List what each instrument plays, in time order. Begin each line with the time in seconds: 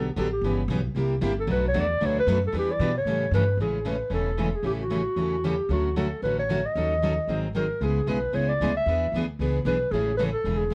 Already playing: upright bass B1
0.16 upright bass A1, steel-string acoustic guitar D3 F#3 B3 D4 G4, clarinet A4
0.32 clarinet G4
0.41 upright bass G1, steel-string acoustic guitar C#3 E3 G3 B3 C#4 E4 G4 B4
0.68 upright bass B1, steel-string acoustic guitar C#3 E3 G3 B3 C#4 E4 G4 B4
0.95 upright bass C2, steel-string acoustic guitar C3 G3 A#3 E4 G4
1.21 upright bass G1, steel-string acoustic guitar C3 G3 A#3 E4 G4
1.40 clarinet A4
1.47 upright bass B1, steel-string acoustic guitar B2 F#3 A3 D4 F#4 B4
1.52 clarinet B4
1.68 clarinet C#5
1.74 upright bass E2, steel-string acoustic guitar B2 F#3 A3 D4 F#4 B4
1.80 clarinet D5
2.01 upright bass D2, steel-string acoustic guitar B2 F#3 A3 D4 F#4 B4
2.05 clarinet C#5
2.19 clarinet B4
2.27 upright bass F#2, steel-string acoustic guitar B2 F#3 A3 D4 F#4 B4
2.47 clarinet A4
2.53 upright bass E2, steel-string acoustic guitar E3 G3 B3 D4 E4 G4 B4
2.58 clarinet G4
2.72 clarinet D5
2.80 upright bass B2, steel-string acoustic guitar E3 G3 B3 D4 E4 G4 B4
2.98 clarinet C#5
3.05 upright bass A2, steel-string acoustic guitar C#3 E3 G3 A3 C#4 E4 G4 A4
3.31 upright bass G2, steel-string acoustic guitar C#3 E3 G3 A3 C#4 E4 G4 A4, clarinet B4
3.57 upright bass A1, steel-string acoustic guitar C#3 E3 G#3 C#4 E4 A4
3.62 steel-string acoustic guitar A3 G#4, clarinet G#4
3.85 steel-string acoustic guitar C#3 E3 G#3 A3 C#4 E4 G#4 A4, clarinet B4
4.10 upright bass E1, steel-string acoustic guitar C#3 E3 G#3 A3 C#4 E4 G#4 A4
4.14 clarinet A4
4.37 steel-string acoustic guitar C#3 E3 G#3 A3 C#4 E4 G#4 A4
4.55 clarinet G#4
4.62 upright bass A1, steel-string acoustic guitar C#3 E3 G3 A3 C#4 E4 G4, clarinet G4
4.67 steel-string acoustic guitar A4
4.80 clarinet F#4
4.90 steel-string acoustic guitar C#3 E3 G3 A3 C#4 E4 G4 A4
5.16 upright bass E2, steel-string acoustic guitar C#3 E3 G3 A3 C#4 E4 G4 A4
5.44 steel-string acoustic guitar C#3 E3 G3 A3 C#4 E4 G4 A4, clarinet G4
5.69 upright bass D2, steel-string acoustic guitar D3 F#3 A3 C#4 F#4 A4, clarinet F#4
5.96 steel-string acoustic guitar D3 F#3 A3 C#4 F#4 A4, clarinet A4
6.22 upright bass A1, steel-string acoustic guitar D3 F#3 A3 C#4 F#4 A4, clarinet B4
6.39 clarinet C#5
6.49 steel-string acoustic guitar D3 F#3 A3 C#4 F#4 A4
6.66 clarinet D#5
6.75 upright bass D#2, steel-string acoustic guitar D#3 F#3 C#4 D#4 A4
7.03 steel-string acoustic guitar D#3 F#3 C#4 D#4 A4
7.27 upright bass G#1, steel-string acoustic guitar D#3 F#3 C4 D#4 G#4
7.55 steel-string acoustic guitar D#3 F#3 C4 D#4 G#4, clarinet A#4
7.81 upright bass C#2, steel-string acoustic guitar C#3 G#3 B3 E4 G#4, clarinet G#4
8.06 upright bass B1, steel-string acoustic guitar C#3 G#3 B3 E4 G#4, clarinet B4
8.33 upright bass C#2, steel-string acoustic guitar C#3 G#3 B3 E4 G#4, clarinet C#5
8.49 clarinet D5
8.60 upright bass D2, steel-string acoustic guitar C#3 G#3 B3 E4 G#4
8.77 clarinet E5
8.86 upright bass E2, steel-string acoustic guitar E3 B3 D4 G#4 B4
9.12 upright bass D2, steel-string acoustic guitar E3 B3 D4 G#4 B4
9.39 upright bass C#2, steel-string acoustic guitar E3 B3 D4 G#4 B4
9.65 upright bass B1, steel-string acoustic guitar E3 B3 D4 G#4 B4, clarinet B4
9.91 upright bass A1, steel-string acoustic guitar C#3 E3 G#3 A3 C#4 E4 G#4 A4, clarinet G#4
10.17 steel-string acoustic guitar C#3 E3 G#3 A3 C#4 E4 G#4 A4, clarinet B4
10.32 clarinet A4
10.44 upright bass E1, steel-string acoustic guitar C#3 E3 G#3 A3 C#4 E4 G#4 A4
10.57 clarinet G#4
10.70 steel-string acoustic guitar E3 G#3 C#4